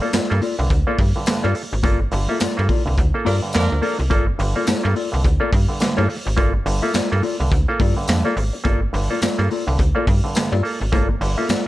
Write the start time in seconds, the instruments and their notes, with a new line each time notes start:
0.01 clav A#3 F4 A4, clean electric guitar A#3 F4 A4 D5
0.13 fm bass G2, clean electric guitar A#3 F4 A4 D5, snare, clap, closed hi-hat, tambourine
0.30 fm bass G2, clav A#3 F4 A4, muted clean electric guitar stroke
0.41 clean electric guitar A#3 F4 A4 D5, open hi-hat
0.59 fm bass C2, clav G2 D3
0.70 fm bass D2, muted clean electric guitar stroke, kick, closed hi-hat
0.87 clav A#3 F4 A4, clean electric guitar A#3 F4 A4 D5
0.98 fm bass G2, muted clean electric guitar stroke, kick, open hi-hat
1.16 clav G2 D3, muted clean electric guitar stroke
1.26 clav G2 D3, muted clean electric guitar stroke, snare, clap, closed hi-hat, tambourine
1.43 fm bass G2, clav A#3 F4 A4, clean electric guitar A#3 F4 A4 D5
1.55 clav F4 A4, muted clean electric guitar stroke, open hi-hat
1.72 fm bass G#1, muted clean electric guitar stroke
1.83 fm bass G1, clean electric guitar A#3 F4 A4 D5, clav A#3 F4 A4, kick, closed hi-hat
2.01 muted clean electric guitar stroke
2.11 fm bass G1, clav G2 D3, muted clean electric guitar stroke, open hi-hat
2.29 clav A#3 F4 A4, clean electric guitar A#3 F4 A4 E5
2.40 fm bass G2, clean electric guitar A#3 F4 A4 D5, snare, clap, closed hi-hat, tambourine
2.57 fm bass G2, clav A#3 F4 A4
2.69 clean electric guitar A#3 F4 A4 D5, kick, open hi-hat
2.85 fm bass C2, clav G2 D3, muted clean electric guitar stroke
2.98 fm bass D2, kick, closed hi-hat
3.14 clav A#3 F4 A4, muted clean electric guitar stroke
3.25 fm bass G2, horn section F3 D4 A#4, clean electric guitar A#3 F4 A4 D5, open hi-hat
3.42 clav G2 D3, muted clean electric guitar stroke
3.53 fm bass F2, clav G2 D3, horn section F3 D4 A#4, muted clean electric guitar stroke, snare, clap, closed hi-hat, tambourine
3.72 fm bass D2
3.82 clav A#3 F4 A4, clean electric guitar A#3 F4 A4 D5, open hi-hat
3.99 fm bass C2, clav F4 A4
4.10 fm bass G1, clean electric guitar A#3 F4 A4 D5, clav A#3 F4 A4, kick, closed hi-hat
4.27 muted clean electric guitar stroke
4.38 fm bass G1, clav G2 D3, muted clean electric guitar stroke, open hi-hat
4.56 clav A#3 F4 A4, clean electric guitar A#3 F4 A4 D5
4.67 fm bass G2, clean electric guitar A#3 F4 A4 D5, snare, clap, closed hi-hat, tambourine
4.83 fm bass G2, clav A#3 F4 A4, muted clean electric guitar stroke
4.95 clean electric guitar A#3 F4 A4 D5, open hi-hat
5.12 fm bass C2, clav G2 D3
5.23 fm bass D2, muted clean electric guitar stroke, kick, closed hi-hat
5.40 clav A#3 F4 A4, clean electric guitar A#3 F4 A4 D5
5.52 fm bass G2, muted clean electric guitar stroke, kick, open hi-hat
5.69 clav G2 D3, muted clean electric guitar stroke
5.80 clav G2 D3, muted clean electric guitar stroke, snare, clap, closed hi-hat, tambourine
5.97 fm bass G2, clav A#3 F4 A4, clean electric guitar A#3 F4 A4 D5
6.08 clav F4 A4, muted clean electric guitar stroke, open hi-hat
6.25 fm bass G#1, muted clean electric guitar stroke
6.37 fm bass G1, clav A#3 F4 A4, clean electric guitar A#3 F4 A4 D5, kick, closed hi-hat
6.53 muted clean electric guitar stroke
6.66 fm bass G1, clav G2 D3, muted clean electric guitar stroke, open hi-hat
6.82 clav A#3 F4 A4, clean electric guitar A#3 F4 A4 E5
6.94 fm bass G2, clean electric guitar A#3 F4 A4 D5, snare, clap, closed hi-hat, tambourine
7.11 fm bass G2, clav A#3 F4 A4, muted clean electric guitar stroke
7.23 clean electric guitar A#3 F4 A4 D5, open hi-hat
7.39 fm bass C2, clav G2 D3, muted clean electric guitar stroke
7.52 fm bass D2, kick, closed hi-hat
7.68 clav A#3 F4 A4, muted clean electric guitar stroke
7.80 fm bass G2, clean electric guitar A#3 F4 A4 D5, kick, open hi-hat
7.97 clav G2 D3, muted clean electric guitar stroke
8.08 fm bass F2, clav G2 D3, muted clean electric guitar stroke, snare, clap, closed hi-hat, tambourine
8.25 clav A#3 F4 A4, clean electric guitar A#3 F4 A4 D5
8.37 fm bass G#1, clav F4 A4, muted clean electric guitar stroke, open hi-hat
8.53 muted clean electric guitar stroke
8.64 fm bass G1, clav A#3 F4 A4, clean electric guitar A#3 F4 A4 D5, kick, closed hi-hat
8.82 muted clean electric guitar stroke
8.93 fm bass G1, clav G2 D3, muted clean electric guitar stroke, open hi-hat
9.10 clav A#3 F4 A4, clean electric guitar A#3 F4 A4 D5
9.22 fm bass G2, clean electric guitar A#3 F4 A4 D5, snare, clap, closed hi-hat, tambourine
9.38 fm bass G2, clav A#3 F4 A4, muted clean electric guitar stroke
9.51 clean electric guitar A#3 F4 A4 D5, open hi-hat
9.67 fm bass C2, clav G2 D3, muted clean electric guitar stroke
9.79 fm bass D2, muted clean electric guitar stroke, kick, closed hi-hat
9.95 clav A#3 F4 A4, clean electric guitar A#3 F4 A4 D5
10.07 fm bass G2, muted clean electric guitar stroke, kick, open hi-hat
10.24 clav G2 D3, muted clean electric guitar stroke
10.35 clav G2 D3, muted clean electric guitar stroke, snare, clap, closed hi-hat, tambourine
10.52 fm bass G2, clean electric guitar A#3 F4 A4 D5
10.63 clav A#3 F4 A4, muted clean electric guitar stroke, open hi-hat
10.81 fm bass G#1, clav F4 A4, muted clean electric guitar stroke
10.92 fm bass G1, clav A#3 F4 A4, clean electric guitar A#3 F4 A4 D5, kick, closed hi-hat
11.10 muted clean electric guitar stroke
11.21 fm bass G1, clav G2 D3, muted clean electric guitar stroke, open hi-hat
11.38 clav A#3 F4 A4, clean electric guitar A#3 F4 A4 E5
11.49 fm bass G2, clean electric guitar A#3 F4 A4 D5, snare, clap, closed hi-hat, tambourine